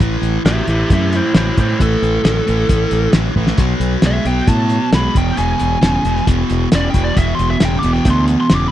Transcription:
0.00 fingered electric bass A1, overdriven electric guitar A2 E3, kick, closed hi-hat
0.22 fingered electric bass A1, closed hi-hat
0.45 fingered electric bass A1, overdriven electric guitar A2 F#3, lead electric guitar G4 E5, snare, closed hi-hat
0.67 fingered electric bass A1, overdriven electric guitar A2 E3, lead electric guitar G4 E5, closed hi-hat
0.90 fingered electric bass F#2, overdriven electric guitar A2 E3, lead electric guitar G4 E5, kick, closed hi-hat
1.13 lead electric guitar E4 C5, closed hi-hat
1.34 fingered electric bass A1, overdriven electric guitar A2 F#3, lead electric guitar E4 C5, snare, closed hi-hat
1.57 fingered electric bass A2, overdriven electric guitar A2 E3, lead electric guitar E4 C5, kick, closed hi-hat
1.80 fingered electric bass A1, overdriven electric guitar A2 E3, lead electric guitar A4, kick, closed hi-hat
2.02 fingered electric bass A1, closed hi-hat
2.24 fingered electric bass A1, overdriven electric guitar A2 F#3, snare, closed hi-hat
2.47 fingered electric bass A1, overdriven electric guitar A2 E3, closed hi-hat
2.69 fingered electric bass A1, overdriven electric guitar A2 E3, kick, closed hi-hat
2.91 fingered electric bass A1, closed hi-hat
3.12 fingered electric bass A1, overdriven electric guitar A2 F#3, snare, closed hi-hat
3.36 fingered electric bass A1, overdriven electric guitar A2 E3, kick
3.47 snare
3.58 fingered electric bass B1, overdriven electric guitar B2 F#3, kick, closed hi-hat, splash
3.80 fingered electric bass B1, closed hi-hat
4.02 fingered electric bass B1, overdriven electric guitar B2 G#3, snare, closed hi-hat
4.06 lead electric guitar E5
4.25 fingered electric bass B1, overdriven electric guitar B2 F#3, lead electric guitar G5, closed hi-hat
4.47 fingered electric bass A2, overdriven electric guitar B2 F#3, lead electric guitar A5, kick, closed hi-hat
4.70 closed hi-hat
4.92 fingered electric bass B1, overdriven electric guitar B2 G#3, lead electric guitar B5, snare, closed hi-hat
5.15 fingered electric bass E1, overdriven electric guitar E2 B2, lead electric guitar G5, kick, closed hi-hat
5.36 fingered electric bass E1, overdriven electric guitar E2 B2, lead electric guitar G#5, closed hi-hat
5.59 fingered electric bass E1, closed hi-hat
5.81 fingered electric bass E1, overdriven electric guitar E2 C#3, snare, closed hi-hat
6.05 fingered electric bass E1, overdriven electric guitar E2 B2, closed hi-hat
6.16 snare
6.27 fingered electric bass E1, overdriven electric guitar E2 B2, kick, closed hi-hat
6.50 fingered electric bass E1, closed hi-hat
6.72 fingered electric bass E1, overdriven electric guitar E2 C#3, lead electric guitar D5, snare, closed hi-hat
6.90 lead electric guitar G5, closed hi-hat
6.94 fingered electric bass E1, overdriven electric guitar E2 B2, kick
7.04 lead electric guitar D5
7.16 fingered electric bass E1, overdriven electric guitar E2 B2, lead electric guitar E5, kick, closed hi-hat
7.35 lead electric guitar C6
7.39 fingered electric bass E1, closed hi-hat
7.50 lead electric guitar E5
7.60 fingered electric bass E1, overdriven electric guitar E2 C#3, snare, closed hi-hat
7.65 lead electric guitar G5
7.79 lead electric guitar D6, closed hi-hat
7.83 fingered electric bass E1, overdriven electric guitar E2 B2
7.93 lead electric guitar G5, snare
8.05 fingered electric bass D2, overdriven electric guitar E2 B2, kick, closed hi-hat
8.10 lead electric guitar C6
8.28 closed hi-hat
8.40 lead electric guitar C6
8.49 fingered electric bass E1, overdriven electric guitar E2 C#3, snare, closed hi-hat
8.55 lead electric guitar D6
8.68 lead electric guitar B5

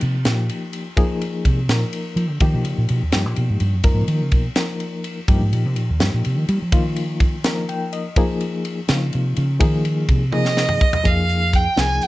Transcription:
Already playing: reed electric piano F3 A#3 D#4 G4
0.01 fingered electric bass C3, ride
0.25 fingered electric bass A#2, reed electric piano F3 A#3 D#4 G4, snare, ride
0.49 ride
0.73 ride
0.97 reed electric piano F3 A#3 D#4 G#4, kick, ride
1.21 ride
1.45 fingered electric bass C3, kick, ride
1.69 fingered electric bass A#2, reed electric piano F3 A#3 D#4 A#4, snare, ride
1.93 ride
2.16 fingered electric bass F3, ride
2.30 fingered electric bass D3
2.40 fingered electric bass D#3, reed electric piano F3 A#3 D#4 G4, kick, ride
2.54 fingered electric bass B2
2.65 fingered electric bass C#3, ride
2.78 fingered electric bass A#2
2.89 fingered electric bass B2, ride
3.03 fingered electric bass D#2
3.12 fingered electric bass G2, reed electric piano F3 A#3 D#4 G4, snare, ride
3.26 fingered electric bass A#2
3.36 fingered electric bass B2, ride
3.50 fingered electric bass G#2
3.60 fingered electric bass G2, ride
3.74 fingered electric bass F#2
3.84 fingered electric bass F2, reed electric piano F3 A#3 D#4 A#4, kick, ride
3.94 fingered electric bass G#2
4.02 fingered electric bass B2
4.08 fingered electric bass D#3, ride
4.22 fingered electric bass C#3
4.31 fingered electric bass B2, kick, ride
4.56 reed electric piano F3 A#3 D#4 A#4, snare, ride
4.80 ride
5.04 ride
5.28 fingered electric bass G2, reed electric piano F3 A#3 D#4 G4, kick, ride
5.41 fingered electric bass G#2
5.53 fingered electric bass A#2, ride
5.65 fingered electric bass C3
5.76 fingered electric bass A#2, ride
5.90 fingered electric bass D#2
6.00 fingered electric bass G2, reed electric piano F3 A#3 D#4 G4, snare, ride
6.14 fingered electric bass A#2
6.25 fingered electric bass C3, ride
6.38 fingered electric bass D#3
6.49 fingered electric bass G3, ride
6.62 fingered electric bass F3
6.72 fingered electric bass D#3, reed electric piano F3 A#3 D#4 F4, kick, ride
6.96 ride
7.20 kick, ride
7.44 reed electric piano F3 A#3 D#4 A#4, snare, ride
7.69 reed electric piano G5, ride
7.93 reed electric piano D#5, ride
8.16 reed electric piano F3 A#3 D#4 G#4, kick, ride
8.41 ride
8.65 ride
8.88 fingered electric bass C#3, reed electric piano F3 A#3 D#4 F4, snare, ride
9.13 fingered electric bass C3, ride
9.36 fingered electric bass C#3, ride
9.60 fingered electric bass D#3, reed electric piano F3 A#3 D#4 G#4, kick, ride
9.85 ride
10.09 fingered electric bass C3, kick, ride
10.32 reed electric piano F3 A#3 D#4 G#4, violin D#5, high tom
10.45 snare
10.57 snare
10.69 mid tom
10.81 kick
10.93 floor tom
11.04 fingered electric bass F2, reed electric piano F3 A#3 D#4 G#4, violin F5, kick, closed hi-hat
11.29 closed hi-hat
11.53 violin G5, kick, closed hi-hat
11.76 fingered electric bass C2, reed electric piano F3 A#3 D#4 G#4, violin G#5, snare, closed hi-hat
12.01 violin G5, closed hi-hat

